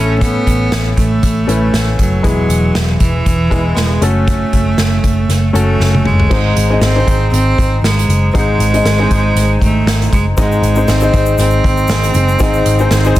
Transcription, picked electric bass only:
Already playing: A1
0.47 A1
0.72 A1
0.97 A1
1.22 A1
1.48 A1
1.74 A1
1.99 F#1
2.24 E1
2.49 E1
2.75 E1
3.00 E1
3.26 E1
3.51 E1
3.76 E1
4.02 F#1
4.53 F#1
4.77 F#1
5.03 F#1
5.29 F#1
5.54 F#1
5.80 F#1
6.05 F#1
6.31 G#1
6.56 G#1
6.81 G#1
7.07 G#1
7.32 G#1
7.58 G#1
7.82 G#1
8.08 F#1
8.34 G#1
8.59 G#1
8.85 G#1
9.11 G#1
9.35 G#1
9.61 G#1
9.86 G#1
10.12 F#1
10.38 G#1
10.62 G#1
10.88 G#1
11.13 G#1
11.38 G#1
11.64 G#1
11.88 G#1
12.14 F#1
12.40 G#1
12.66 G#1
12.91 G#1
13.16 G#1

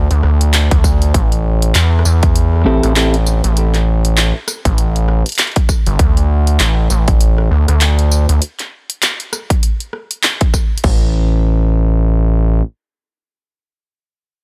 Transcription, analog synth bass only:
0.11 D2
0.24 D2
0.71 D2
1.14 A1
1.75 E2
2.05 E2
2.66 A1
2.84 A1
3.44 A1
4.65 A1
5.87 G1
5.99 D2
6.60 A1
6.91 A1
7.51 D2
7.69 D2
8.29 D2
10.84 A1

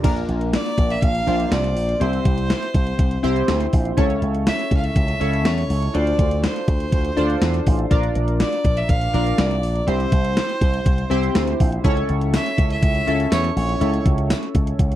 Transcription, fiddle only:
0.54 D5
0.91 E5
1.03 F5
1.52 D5
2.01 C5
4.47 E5
4.77 F5
4.84 E5
5.46 C#5
5.95 D5
6.44 C5
8.40 D5
8.77 E5
8.90 F5
9.39 D5
9.89 C5
12.35 E5
12.71 E5
13.32 C#5
13.57 C#5

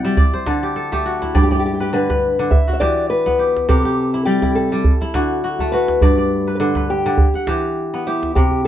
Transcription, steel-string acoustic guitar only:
1.35 G4
1.43 G4
1.52 G4
1.59 G4
1.66 G4
1.74 G4
1.81 G4
1.94 B4
2.51 E5
2.73 E5
2.80 D5
3.10 B4
3.69 A4
4.25 G4
4.55 A4
5.72 B4
6.55 B4
6.60 A4
6.90 G4
8.07 E4
8.35 G4

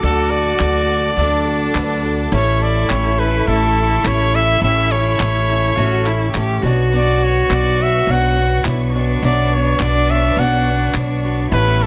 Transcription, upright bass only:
0.03 D2
0.60 D2
1.17 D2
1.74 D2
2.32 A1
2.90 A1
3.47 A1
4.04 A1
4.61 A1
5.20 A1
5.77 A1
6.35 A1
6.63 B1
7.50 B1
8.07 B1
8.65 B1
9.22 B1
9.79 B1
10.37 B1
10.94 B1
11.52 A1

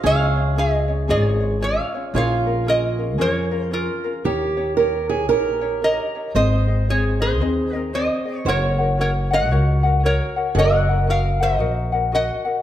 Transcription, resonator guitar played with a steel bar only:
0.06 C#5 F5
0.58 G#4 D#5
1.10 G#4 C#5
1.62 C#5 F5
2.16 C#5 F5
2.68 A#4 D#5
3.21 A#4 C#5
3.61 C5
3.73 F4 A#4
5.84 A#4 D#5
6.36 C5 D#5
6.90 G#4 C#5
7.22 G#4 C5
7.76 A#4
7.95 C5 D#5
8.37 C#5
8.48 A#4 C#5
9.01 A#4 C#5
9.33 D#5 F#5
9.84 F5
10.06 A#4 C#5
10.58 D#5 F#5
11.10 A#4 F5
11.43 C5 D#5
12.15 D#5 F#5

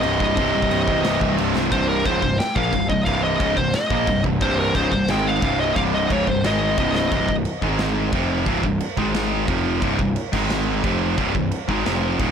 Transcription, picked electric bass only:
0.04 C1
0.21 C1
0.37 C1
0.55 C1
0.71 C1
0.88 C1
1.05 C1
1.21 C1
1.39 C1
1.56 C1
1.72 C1
2.06 C#1
2.23 C1
2.56 A#1
2.73 C1
2.90 C1
3.07 C1
3.40 C#1
3.57 C1
3.91 A#1
4.07 C1
4.25 C1
4.41 C1
4.75 C#1
4.92 C1
5.09 G#1
5.42 C1
5.76 C1
6.10 C#1
6.28 C1
6.45 G#1
6.78 C1
7.12 C1
7.29 C1
7.62 G#1
8.13 F1
8.47 C1
8.64 C1
8.98 G#1
9.48 F1
9.82 C1
9.99 C1
10.33 G#1
10.84 F1
11.18 C1
11.35 C1
11.69 G#1
11.86 F1
12.20 D#1

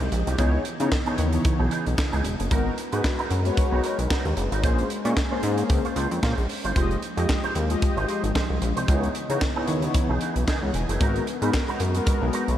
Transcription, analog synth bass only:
0.00 C2
0.12 A#1
0.27 C2
0.39 C#2
0.80 C#3
1.19 D#2
1.60 B1
1.86 B1
2.13 C#2
2.25 E1
2.40 F#1
2.51 G#1
2.93 G#2
3.31 F#2
3.72 B1
3.99 B1
4.25 D#2
4.37 F#1
4.52 G#1
4.64 A#1
5.05 A#2
5.43 G#2
5.70 C#2
5.96 C#2
6.11 F2
6.23 A#2
6.38 A#1
6.64 G1
6.76 F1
7.17 F2
7.55 D#2
7.97 G#1
8.24 G#1
8.50 C2
8.62 A#1
8.77 C2
8.88 C#2
9.30 C#3
9.68 D#2
10.09 B1
10.36 B1
10.62 C#2
10.74 E1
10.89 F#1
11.01 G#1
11.42 G#2
11.80 F#2
12.22 B1
12.48 B1

